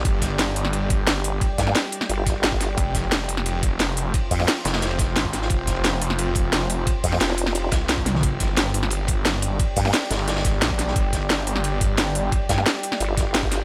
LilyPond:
<<
  \new Staff \with { instrumentName = "Ambient pad" } { \time 4/4 \key f \dorian \tempo 4 = 176 << { g''1~ | g''1~ | g''1~ | g''1~ |
g''1~ | g''1 | g''1~ | g''1~ |
g''1~ | g''1 | } \\ { <g' d''>1~ | <g' d''>1 | <f' c''>1~ | <f' c''>1~ |
<f' c''>1~ | <f' c''>1 | <g' d''>1~ | <g' d''>1~ |
<g' d''>1~ | <g' d''>1 | } >> }
  \new Staff \with { instrumentName = "Wobble bass" } { \clef bass \time 4/4 \key f \dorian r1 | r8 g,8 r4 g,,2 | r1 | r8 f,8 r2. |
r1 | r8 f,8 f,,4. r4. | r1 | r8 g,8 r2. |
r1 | r8 g,8 r4 g,,2 | }
  \new Staff \with { instrumentName = "Detuned saw bass" } { \clef bass \time 4/4 \key f \dorian g,,4. g,,2~ g,,8 | r1 | f,,4. f,,2~ f,,8 | r4. f,,4. aes,,4 |
f,,4. f,,2~ f,,8 | r2 r8 c,4. | g,,4. g,,2~ g,,8 | r4. g,,4. bes,,4 |
g,,4. g,,2~ g,,8 | r1 | }
  \new DrumStaff \with { instrumentName = "Drums" } \drummode { \time 4/4 <hh bd cymr>8 <hh bd cymr sn>16 cymr16 <hh cymr sn>8 <hh cymr>16 sn16 <hh cymr>8 <hh bd cymr>8 <hh cymr sn>8 <hh cymr>8 | <hh bd cymr>8 <hh bd cymr sn>16 sn16 <hh cymr sn>8 <hh cymr>16 sn16 <hh cymr>8 <hh bd cymr sn>8 <hh cymr sn>16 bd16 <hh cymr sn>8 | <hh bd cymr>8 <hh bd cymr sn>16 cymr16 <hh cymr sn>8 <hh cymr>16 sn16 <hh cymr>8 <hh bd cymr>8 <hh cymr sn>8 <hh cymr>8 | <hh bd cymr>8 <hh hho bd>16 sn16 <hh cymr sn>8 <hh cymr sn>16 <cymr sn>16 <hh cymr sn>16 cymr16 <hh bd cymr sn>8 <hh cymr sn>16 bd16 <hh cymr sn>16 sn16 |
<hh bd cymr>8 <hh bd cymr sn>16 cymr16 <hh cymr sn>8 <hh cymr>16 sn16 <hh cymr>8 <hh bd cymr>8 <hh cymr sn>8 <hh cymr>8 | <hh bd cymr>8 <hh hho bd>16 sn16 <hh cymr sn>16 sn16 <hh cymr>16 sn16 <hh cymr>8 <hh bd cymr sn>8 <hh cymr sn>16 bd16 <hh cymr sn tommh>16 <sn toml>16 | <hh bd cymr>8 <hh bd cymr sn>16 cymr16 <hh cymr sn>8 <hh cymr>16 sn16 <hh cymr>8 <hh bd cymr>8 <hh cymr sn>8 <hh cymr>8 | <hh bd cymr>8 <hh hho bd>16 sn16 <hh cymr sn>8 <hh cymr sn>16 cymr16 <hh cymr sn>16 <cymr sn>16 <hh bd cymr sn>8 <hh cymr sn>16 bd16 <hh cymr sn>16 sn16 |
<hh bd cymr>8 <hh bd cymr sn>16 cymr16 <hh cymr sn>8 <hh cymr>16 sn16 <hh cymr>8 <hh bd cymr>8 <hh cymr sn>8 <hh cymr>8 | <hh bd cymr>8 <hh bd cymr sn>16 sn16 <hh cymr sn>8 <hh cymr>16 sn16 <hh cymr>8 <hh bd cymr sn>8 <hh cymr sn>16 bd16 <hh cymr sn>8 | }
>>